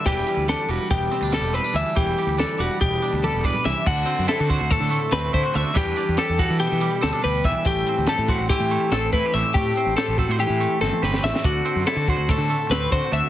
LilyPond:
<<
  \new Staff \with { instrumentName = "Clean electric guitar" } { \time 9/8 \key e \minor \tempo 4. = 95 g'4 a'8 fis'8 g'4 a'8 b'8 e''8 | g'4 a'8 fis'8 g'4 a'8 b'8 e''8 | fis'4 a'8 fis'8 a'4 b'8 c''8 e''8 | g'4 a'8 fis'8 g'4 a'8 b'8 e''8 |
g'4 a'8 fis'8 g'4 a'8 b'8 e''8 | g'4 a'8 fis'8 g'4 a'8 b'8 e''8 | fis'4 a'8 fis'8 a'4 b'8 c''8 e''8 | }
  \new Staff \with { instrumentName = "Clean electric guitar" } { \time 9/8 \key e \minor << { <g d' g' b'>4 d'4. c'16 d'8. c'16 d'8. | r4 d'4. d'4 d'4 | r8 c'8 e'16 fis'16 c''4. c'8 e'16 fis'8. | <g d' g' b'>8 d'8 g'8 a'4. c'16 d'16 g'4 |
r8 c'8 g'8 c''4. c'8 e'16 g'8. | r8 c'8 g'8 a'16 c''4~ c''16 c'8 g'4 | r8 c'8 e'16 fis'16 c''4. c'8 fis'4 | } \\ { e8 g4 g8 b,4 g4 e8 | e8 g4 g8 b,4 g4 e8 | d2 a,8 a4. d8 | e2 b,8 g4. e8 |
a,2 e8 a4. a,8 | r2 e8 a4. a,8 | d2 a,8 a4. d8 | } >> }
  \new Staff \with { instrumentName = "Fingered electric bass" } { \clef bass \time 9/8 \key e \minor e,,8 r16 d,8 r16 e,,16 r16 e,,8 r16 d,8 e,,8 r16 d,16 r16 | e,,8 r16 d,8 r16 e,,16 r16 e,,8 r16 d,8 e,,8 r16 c,16 r16 | d,8 r16 fis,16 r16 d8 d,8 d8 r16 d,8 d16 r16 d,16 r16 | e,8 r16 e,16 r16 e,8 e8 e8 r16 d,16 r16 d,8 b,,16 r16 |
a,,8 r16 d,16 r16 a,8 a,,8 a,8 r16 a,,8 a,16 r16 a,,16 r16 | a,8 r16 a,,16 r16 a,,8 a,8 a,8 r16 g,,16 r16 g,,8 a,,16 r16 | d,8 r16 fis,16 r16 d8 d,8 d8 r16 d,8 d16 r16 d,16 r16 | }
  \new DrumStaff \with { instrumentName = "Drums" } \drummode { \time 9/8 <hh bd>8 hh8 <hh sn>8 hh8 <hh bd>8 <hh sn>8 <hh sn>8 hh8 hh8 | <hh bd>8 hh8 <hh sn>8 hh8 <hh bd>8 hh8 tommh8 bd16 toml16 sn8 | <cymc bd>8 hh8 <hh sn>8 <hh bd sn>8 <hh bd>8 hh8 <hh sn>8 <hh bd>8 <hh sn>8 | <hh bd>8 hh8 <hh sn>8 <hh bd sn>8 hh8 hh8 <hh sn>8 hh8 <hh bd>8 |
<hh bd>8 hh8 <hh sn>8 <hh bd>8 <hh bd>8 hh8 <hh sn>8 <hh bd>8 hh8 | <hh bd>8 hh8 <hh sn>8 <hh bd>8 hh8 hh8 sn16 tommh16 sn16 sn16 sn16 sn16 | <hh bd>8 hh8 <hh sn>8 <hh bd>8 <hh bd sn>8 hh8 <hh sn>8 <hh bd>8 hh8 | }
>>